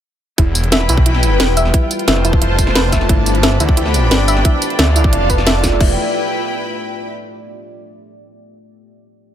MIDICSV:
0, 0, Header, 1, 6, 480
1, 0, Start_track
1, 0, Tempo, 338983
1, 539, Time_signature, 4, 2, 24, 8
1, 13234, End_track
2, 0, Start_track
2, 0, Title_t, "String section"
2, 0, Program_c, 0, 48
2, 541, Note_on_c, 0, 64, 86
2, 721, Note_on_c, 0, 79, 78
2, 1010, Note_on_c, 0, 83, 80
2, 1047, Note_on_c, 0, 71, 82
2, 2460, Note_off_c, 0, 64, 0
2, 2460, Note_off_c, 0, 71, 0
2, 2460, Note_off_c, 0, 83, 0
2, 2461, Note_on_c, 0, 65, 89
2, 2885, Note_on_c, 0, 72, 87
2, 3184, Note_on_c, 0, 81, 79
2, 3229, Note_off_c, 0, 79, 0
2, 3326, Note_on_c, 0, 84, 75
2, 4379, Note_off_c, 0, 72, 0
2, 4381, Note_off_c, 0, 84, 0
2, 4382, Note_on_c, 0, 62, 98
2, 4611, Note_on_c, 0, 83, 90
2, 4763, Note_on_c, 0, 71, 74
2, 5148, Note_off_c, 0, 65, 0
2, 5148, Note_off_c, 0, 81, 0
2, 5245, Note_on_c, 0, 79, 93
2, 6895, Note_on_c, 0, 77, 77
2, 6909, Note_off_c, 0, 71, 0
2, 6918, Note_on_c, 0, 69, 71
2, 7068, Note_off_c, 0, 79, 0
2, 7068, Note_off_c, 0, 83, 0
2, 7164, Note_on_c, 0, 81, 76
2, 8219, Note_off_c, 0, 69, 0
2, 8220, Note_off_c, 0, 77, 0
2, 8220, Note_off_c, 0, 81, 0
2, 8220, Note_on_c, 0, 64, 78
2, 8221, Note_off_c, 0, 62, 0
2, 8293, Note_on_c, 0, 71, 77
2, 8365, Note_on_c, 0, 79, 75
2, 8439, Note_on_c, 0, 83, 78
2, 10083, Note_off_c, 0, 64, 0
2, 10084, Note_off_c, 0, 71, 0
2, 10084, Note_off_c, 0, 79, 0
2, 10085, Note_off_c, 0, 83, 0
2, 13234, End_track
3, 0, Start_track
3, 0, Title_t, "Ambient pad"
3, 0, Program_c, 1, 92
3, 4382, Note_on_c, 1, 74, 95
3, 8182, Note_off_c, 1, 74, 0
3, 13234, End_track
4, 0, Start_track
4, 0, Title_t, "Synth pluck"
4, 0, Program_c, 2, 84
4, 539, Note_on_c, 2, 64, 81
4, 612, Note_off_c, 2, 64, 0
4, 1019, Note_on_c, 2, 76, 79
4, 1200, Note_off_c, 2, 76, 0
4, 1260, Note_on_c, 2, 64, 81
4, 1332, Note_off_c, 2, 64, 0
4, 1501, Note_on_c, 2, 64, 82
4, 1572, Note_off_c, 2, 64, 0
4, 1980, Note_on_c, 2, 71, 80
4, 2100, Note_off_c, 2, 71, 0
4, 2221, Note_on_c, 2, 76, 105
4, 2340, Note_off_c, 2, 76, 0
4, 2460, Note_on_c, 2, 64, 83
4, 2532, Note_off_c, 2, 64, 0
4, 2940, Note_on_c, 2, 76, 78
4, 3120, Note_off_c, 2, 76, 0
4, 3180, Note_on_c, 2, 64, 80
4, 3252, Note_off_c, 2, 64, 0
4, 3420, Note_on_c, 2, 64, 81
4, 3492, Note_off_c, 2, 64, 0
4, 3901, Note_on_c, 2, 71, 80
4, 4020, Note_off_c, 2, 71, 0
4, 4141, Note_on_c, 2, 76, 105
4, 4260, Note_off_c, 2, 76, 0
4, 4380, Note_on_c, 2, 64, 80
4, 4452, Note_off_c, 2, 64, 0
4, 4860, Note_on_c, 2, 76, 82
4, 5040, Note_off_c, 2, 76, 0
4, 5100, Note_on_c, 2, 64, 83
4, 5172, Note_off_c, 2, 64, 0
4, 5340, Note_on_c, 2, 64, 84
4, 5412, Note_off_c, 2, 64, 0
4, 5820, Note_on_c, 2, 71, 80
4, 5940, Note_off_c, 2, 71, 0
4, 6059, Note_on_c, 2, 76, 100
4, 6179, Note_off_c, 2, 76, 0
4, 6300, Note_on_c, 2, 64, 87
4, 6372, Note_off_c, 2, 64, 0
4, 6780, Note_on_c, 2, 76, 79
4, 6960, Note_off_c, 2, 76, 0
4, 7020, Note_on_c, 2, 64, 79
4, 7092, Note_off_c, 2, 64, 0
4, 7260, Note_on_c, 2, 64, 79
4, 7332, Note_off_c, 2, 64, 0
4, 7500, Note_on_c, 2, 71, 103
4, 7620, Note_off_c, 2, 71, 0
4, 7740, Note_on_c, 2, 76, 104
4, 7860, Note_off_c, 2, 76, 0
4, 7980, Note_on_c, 2, 65, 77
4, 8160, Note_off_c, 2, 65, 0
4, 8220, Note_on_c, 2, 64, 96
4, 8443, Note_off_c, 2, 64, 0
4, 13234, End_track
5, 0, Start_track
5, 0, Title_t, "Detuned saw bass"
5, 0, Program_c, 3, 39
5, 540, Note_on_c, 3, 28, 97
5, 1241, Note_off_c, 3, 28, 0
5, 1261, Note_on_c, 3, 35, 97
5, 1961, Note_off_c, 3, 35, 0
5, 1980, Note_on_c, 3, 28, 103
5, 2441, Note_off_c, 3, 28, 0
5, 2940, Note_on_c, 3, 29, 100
5, 3401, Note_off_c, 3, 29, 0
5, 3420, Note_on_c, 3, 29, 99
5, 4361, Note_off_c, 3, 29, 0
5, 4380, Note_on_c, 3, 31, 102
5, 5081, Note_off_c, 3, 31, 0
5, 5100, Note_on_c, 3, 38, 101
5, 5801, Note_off_c, 3, 38, 0
5, 5821, Note_on_c, 3, 31, 101
5, 6281, Note_off_c, 3, 31, 0
5, 6780, Note_on_c, 3, 38, 97
5, 7241, Note_off_c, 3, 38, 0
5, 7260, Note_on_c, 3, 29, 98
5, 8200, Note_off_c, 3, 29, 0
5, 8220, Note_on_c, 3, 28, 101
5, 8443, Note_off_c, 3, 28, 0
5, 13234, End_track
6, 0, Start_track
6, 0, Title_t, "Drums"
6, 540, Note_on_c, 9, 36, 116
6, 540, Note_on_c, 9, 42, 99
6, 682, Note_off_c, 9, 36, 0
6, 682, Note_off_c, 9, 42, 0
6, 780, Note_on_c, 9, 42, 69
6, 780, Note_on_c, 9, 54, 61
6, 900, Note_off_c, 9, 42, 0
6, 900, Note_on_c, 9, 42, 37
6, 922, Note_off_c, 9, 54, 0
6, 1019, Note_off_c, 9, 42, 0
6, 1019, Note_on_c, 9, 38, 120
6, 1019, Note_on_c, 9, 42, 97
6, 1140, Note_on_c, 9, 40, 36
6, 1161, Note_off_c, 9, 38, 0
6, 1161, Note_off_c, 9, 42, 0
6, 1260, Note_on_c, 9, 42, 74
6, 1260, Note_on_c, 9, 54, 62
6, 1282, Note_off_c, 9, 40, 0
6, 1380, Note_on_c, 9, 36, 109
6, 1402, Note_off_c, 9, 42, 0
6, 1402, Note_off_c, 9, 54, 0
6, 1500, Note_on_c, 9, 42, 95
6, 1522, Note_off_c, 9, 36, 0
6, 1621, Note_on_c, 9, 40, 36
6, 1641, Note_off_c, 9, 42, 0
6, 1741, Note_on_c, 9, 42, 68
6, 1741, Note_on_c, 9, 54, 58
6, 1762, Note_off_c, 9, 40, 0
6, 1883, Note_off_c, 9, 42, 0
6, 1883, Note_off_c, 9, 54, 0
6, 1981, Note_on_c, 9, 38, 119
6, 1981, Note_on_c, 9, 42, 94
6, 2122, Note_off_c, 9, 38, 0
6, 2122, Note_off_c, 9, 42, 0
6, 2221, Note_on_c, 9, 42, 69
6, 2221, Note_on_c, 9, 54, 59
6, 2341, Note_on_c, 9, 40, 36
6, 2363, Note_off_c, 9, 42, 0
6, 2363, Note_off_c, 9, 54, 0
6, 2460, Note_on_c, 9, 36, 124
6, 2461, Note_on_c, 9, 42, 95
6, 2482, Note_off_c, 9, 40, 0
6, 2602, Note_off_c, 9, 36, 0
6, 2603, Note_off_c, 9, 42, 0
6, 2701, Note_on_c, 9, 42, 67
6, 2701, Note_on_c, 9, 54, 58
6, 2822, Note_off_c, 9, 42, 0
6, 2822, Note_on_c, 9, 42, 39
6, 2843, Note_off_c, 9, 54, 0
6, 2941, Note_off_c, 9, 42, 0
6, 2941, Note_on_c, 9, 38, 123
6, 2941, Note_on_c, 9, 42, 93
6, 3061, Note_on_c, 9, 40, 36
6, 3083, Note_off_c, 9, 38, 0
6, 3083, Note_off_c, 9, 42, 0
6, 3181, Note_on_c, 9, 42, 69
6, 3181, Note_on_c, 9, 54, 58
6, 3203, Note_off_c, 9, 40, 0
6, 3300, Note_on_c, 9, 36, 115
6, 3323, Note_off_c, 9, 42, 0
6, 3323, Note_off_c, 9, 54, 0
6, 3421, Note_on_c, 9, 42, 93
6, 3442, Note_off_c, 9, 36, 0
6, 3563, Note_off_c, 9, 42, 0
6, 3660, Note_on_c, 9, 36, 68
6, 3662, Note_on_c, 9, 42, 67
6, 3662, Note_on_c, 9, 54, 56
6, 3781, Note_on_c, 9, 40, 50
6, 3802, Note_off_c, 9, 36, 0
6, 3804, Note_off_c, 9, 42, 0
6, 3804, Note_off_c, 9, 54, 0
6, 3901, Note_on_c, 9, 38, 124
6, 3901, Note_on_c, 9, 42, 92
6, 3922, Note_off_c, 9, 40, 0
6, 4043, Note_off_c, 9, 38, 0
6, 4043, Note_off_c, 9, 42, 0
6, 4140, Note_on_c, 9, 36, 66
6, 4141, Note_on_c, 9, 40, 58
6, 4141, Note_on_c, 9, 42, 67
6, 4141, Note_on_c, 9, 54, 58
6, 4262, Note_off_c, 9, 40, 0
6, 4262, Note_on_c, 9, 40, 37
6, 4282, Note_off_c, 9, 36, 0
6, 4283, Note_off_c, 9, 42, 0
6, 4283, Note_off_c, 9, 54, 0
6, 4380, Note_on_c, 9, 36, 127
6, 4381, Note_on_c, 9, 42, 89
6, 4403, Note_off_c, 9, 40, 0
6, 4522, Note_off_c, 9, 36, 0
6, 4522, Note_off_c, 9, 42, 0
6, 4621, Note_on_c, 9, 42, 65
6, 4621, Note_on_c, 9, 54, 57
6, 4740, Note_off_c, 9, 42, 0
6, 4740, Note_on_c, 9, 42, 35
6, 4762, Note_off_c, 9, 54, 0
6, 4860, Note_off_c, 9, 42, 0
6, 4860, Note_on_c, 9, 38, 127
6, 4860, Note_on_c, 9, 42, 92
6, 4980, Note_on_c, 9, 40, 37
6, 5002, Note_off_c, 9, 38, 0
6, 5002, Note_off_c, 9, 42, 0
6, 5100, Note_on_c, 9, 42, 69
6, 5100, Note_on_c, 9, 54, 60
6, 5122, Note_off_c, 9, 40, 0
6, 5220, Note_on_c, 9, 36, 114
6, 5242, Note_off_c, 9, 42, 0
6, 5242, Note_off_c, 9, 54, 0
6, 5340, Note_on_c, 9, 42, 93
6, 5362, Note_off_c, 9, 36, 0
6, 5461, Note_on_c, 9, 40, 36
6, 5482, Note_off_c, 9, 42, 0
6, 5582, Note_on_c, 9, 42, 63
6, 5582, Note_on_c, 9, 54, 57
6, 5603, Note_off_c, 9, 40, 0
6, 5723, Note_off_c, 9, 42, 0
6, 5723, Note_off_c, 9, 54, 0
6, 5822, Note_on_c, 9, 38, 123
6, 5822, Note_on_c, 9, 42, 91
6, 5963, Note_off_c, 9, 38, 0
6, 5963, Note_off_c, 9, 42, 0
6, 6061, Note_on_c, 9, 42, 64
6, 6061, Note_on_c, 9, 54, 57
6, 6182, Note_on_c, 9, 40, 38
6, 6203, Note_off_c, 9, 42, 0
6, 6203, Note_off_c, 9, 54, 0
6, 6300, Note_on_c, 9, 36, 122
6, 6300, Note_on_c, 9, 42, 90
6, 6323, Note_off_c, 9, 40, 0
6, 6442, Note_off_c, 9, 36, 0
6, 6442, Note_off_c, 9, 42, 0
6, 6541, Note_on_c, 9, 42, 65
6, 6541, Note_on_c, 9, 54, 58
6, 6660, Note_off_c, 9, 42, 0
6, 6660, Note_on_c, 9, 42, 35
6, 6682, Note_off_c, 9, 54, 0
6, 6781, Note_off_c, 9, 42, 0
6, 6781, Note_on_c, 9, 38, 127
6, 6781, Note_on_c, 9, 42, 89
6, 6901, Note_on_c, 9, 40, 34
6, 6922, Note_off_c, 9, 38, 0
6, 6922, Note_off_c, 9, 42, 0
6, 7021, Note_on_c, 9, 42, 66
6, 7021, Note_on_c, 9, 54, 61
6, 7043, Note_off_c, 9, 40, 0
6, 7140, Note_on_c, 9, 36, 115
6, 7162, Note_off_c, 9, 42, 0
6, 7162, Note_off_c, 9, 54, 0
6, 7260, Note_on_c, 9, 42, 91
6, 7282, Note_off_c, 9, 36, 0
6, 7402, Note_off_c, 9, 42, 0
6, 7500, Note_on_c, 9, 36, 69
6, 7501, Note_on_c, 9, 42, 61
6, 7501, Note_on_c, 9, 54, 58
6, 7621, Note_on_c, 9, 40, 49
6, 7642, Note_off_c, 9, 36, 0
6, 7642, Note_off_c, 9, 42, 0
6, 7642, Note_off_c, 9, 54, 0
6, 7740, Note_on_c, 9, 38, 120
6, 7740, Note_on_c, 9, 42, 90
6, 7762, Note_off_c, 9, 40, 0
6, 7881, Note_off_c, 9, 38, 0
6, 7881, Note_off_c, 9, 42, 0
6, 7980, Note_on_c, 9, 36, 65
6, 7980, Note_on_c, 9, 38, 39
6, 7980, Note_on_c, 9, 40, 56
6, 7980, Note_on_c, 9, 42, 65
6, 7980, Note_on_c, 9, 54, 58
6, 8100, Note_off_c, 9, 40, 0
6, 8100, Note_on_c, 9, 40, 35
6, 8122, Note_off_c, 9, 36, 0
6, 8122, Note_off_c, 9, 38, 0
6, 8122, Note_off_c, 9, 42, 0
6, 8122, Note_off_c, 9, 54, 0
6, 8220, Note_on_c, 9, 36, 113
6, 8220, Note_on_c, 9, 49, 88
6, 8241, Note_off_c, 9, 40, 0
6, 8362, Note_off_c, 9, 36, 0
6, 8362, Note_off_c, 9, 49, 0
6, 13234, End_track
0, 0, End_of_file